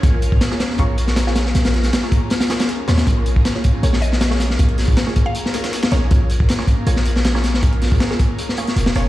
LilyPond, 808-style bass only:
\new Staff \with { instrumentName = "808-style bass" } { \clef bass \time 4/4 \key bes \minor \tempo 4 = 158 bes,,4 r4 bes,,2 | bes,,4 r2 r8 ees,8 | bes,,4 r4 bes,,2 | bes,,4 r2 r8 bes,,8 |
bes,,4 r4 bes,,2 | bes,,4 r2 f,,8 f,,8 | }